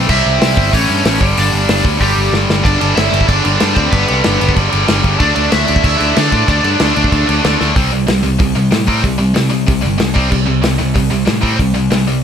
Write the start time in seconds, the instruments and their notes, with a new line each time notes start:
0.08 picked electric bass C2, distorted electric guitar C3 G3 C4, overdriven electric guitar E4 E5, kick, crash
0.26 picked electric bass C2
0.41 picked electric bass C2, snare, open hi-hat
0.57 picked electric bass G1, kick
0.71 picked electric bass A1, distorted electric guitar A2 E3 A3, overdriven electric guitar C#4 C#5, kick, open hi-hat
0.90 picked electric bass G2
1.05 picked electric bass A1, snare, open hi-hat
1.20 picked electric bass G1, distorted electric guitar G2 D3 G3, kick
1.37 picked electric bass G1, overdriven electric guitar D4 D5, open hi-hat
1.53 picked electric bass G1
1.69 picked electric bass G1, snare, open hi-hat
1.85 picked electric bass D2, kick
1.99 picked electric bass G1, distorted electric guitar G2 D3 G3, overdriven electric guitar G3 G4, kick, open hi-hat
2.17 picked electric bass G1
2.33 picked electric bass G1, snare
2.49 picked electric bass G1, snare
2.63 picked electric bass G1, distorted electric guitar G2 D3 G3, overdriven electric guitar D4 D5, kick, crash
2.80 picked electric bass G1, distorted electric guitar G2 D3 G3, crash
2.95 picked electric bass G1, distorted electric guitar G2 D3 G3, overdriven electric guitar E4 E5, snare, crash
3.13 picked electric bass G1, distorted electric guitar G2 D3 G3, crash
3.21 kick
3.28 picked electric bass G1, distorted electric guitar G2 D3 G3, overdriven electric guitar D4 D5, kick, crash
3.44 picked electric bass G1, distorted electric guitar G2 D3 G3, crash
3.60 distorted electric guitar G2 D3 G3, picked electric bass G2, snare, crash
3.74 picked electric bass D2, distorted electric guitar G2 D3 G3, overdriven electric guitar C4 C5, kick, crash
3.91 picked electric bass G1, distorted electric guitar G2 D3 G3, overdriven electric guitar B3 B4, kick, crash
4.08 picked electric bass C2, distorted electric guitar G2 D3 G3, crash
4.24 picked electric bass G1, distorted electric guitar G2 D3 G3, snare, crash
4.41 picked electric bass G1, distorted electric guitar G2 D3 G3, crash
4.49 kick
4.55 picked electric bass G1, distorted electric guitar G2 D3 G3, kick, crash
4.71 picked electric bass G1, distorted electric guitar G2 D3 G3, crash
4.86 picked electric bass G1, distorted electric guitar G2 D3 G3, snare, crash
5.03 picked electric bass G1, distorted electric guitar G2 D3 G3, kick, crash
5.18 picked electric bass D2, distorted electric guitar D3 A3 D4, overdriven electric guitar D4 D5, kick, crash
5.35 picked electric bass D2, distorted electric guitar D3 A3 D4, crash
5.51 picked electric bass D2, distorted electric guitar D3 A3 D4, overdriven electric guitar E4 E5, snare, crash
5.66 picked electric bass D2, distorted electric guitar D3 A3 D4, crash
5.76 kick
5.82 picked electric bass D2, distorted electric guitar D3 A3 D4, overdriven electric guitar E4 E5, kick, crash
5.98 picked electric bass D2, distorted electric guitar D3 A3 D4, crash
6.15 distorted electric guitar D3 A3 D4, picked electric bass D3, overdriven electric guitar D4 D5, snare, crash
6.32 picked electric bass A2, distorted electric guitar D3 A3 D4, kick, crash
6.48 picked electric bass D2, distorted electric guitar D3 A3 D4, overdriven electric guitar D4 D5, kick, crash
6.64 picked electric bass G2, distorted electric guitar D3 A3 D4, crash
6.80 picked electric bass D2, distorted electric guitar D3 A3 D4, snare, crash
6.96 picked electric bass D2, distorted electric guitar D3 A3 D4, crash
7.04 kick
7.12 picked electric bass D2, distorted electric guitar D3 A3 D4, kick, crash
7.27 picked electric bass D2, distorted electric guitar D3 A3 D4, crash
7.44 picked electric bass D2, distorted electric guitar D3 A3 D4, snare, crash
7.60 picked electric bass D2, distorted electric guitar D3 A3 D4, snare
7.76 picked electric bass C2, distorted electric guitar C3 G3 C4, kick, open hi-hat
7.92 picked electric bass C2, distorted electric guitar C3 G3
8.07 picked electric bass C2, distorted electric guitar C3 G3, snare, open hi-hat
8.23 picked electric bass C2, distorted electric guitar C3 G3
8.39 picked electric bass C2, distorted electric guitar C3 G3, kick, open hi-hat
8.55 picked electric bass C2, distorted electric guitar C3 G3
8.71 picked electric bass A2, distorted electric guitar C3 G3, snare, open hi-hat
8.87 distorted electric guitar C3 G3 C4, kick
9.03 picked electric bass C2, distorted electric guitar C3 G3, kick, open hi-hat
9.18 picked electric bass C2, distorted electric guitar C3 G3
9.34 picked electric bass C2, distorted electric guitar C3 G3, snare, open hi-hat
9.50 distorted electric guitar C3 G3
9.66 picked electric bass C2, distorted electric guitar C3 G3, kick, open hi-hat
9.81 distorted electric guitar C3 G3
9.85 picked electric bass G1
9.98 picked electric bass C2, distorted electric guitar C3 G3, snare, open hi-hat
10.14 picked electric bass C2, distorted electric guitar C3 G3 C4, kick
10.30 picked electric bass C2, distorted electric guitar C3 G3, kick, crash
10.46 picked electric bass C2, distorted electric guitar C3 G3
10.62 picked electric bass C2, distorted electric guitar C3 G3, snare, open hi-hat
10.79 picked electric bass C2, distorted electric guitar C3 G3
10.95 picked electric bass C2, distorted electric guitar C3 G3, kick, open hi-hat
11.11 picked electric bass C2, distorted electric guitar C3 G3
11.26 picked electric bass A2, distorted electric guitar C3 G3, snare, open hi-hat
11.42 distorted electric guitar C3 G3 C4, kick
11.57 picked electric bass C2, distorted electric guitar C3 G3, kick, open hi-hat
11.74 picked electric bass C2, distorted electric guitar C3 G3
11.91 picked electric bass C2, distorted electric guitar C3 G3, snare, open hi-hat
12.07 distorted electric guitar C3 G3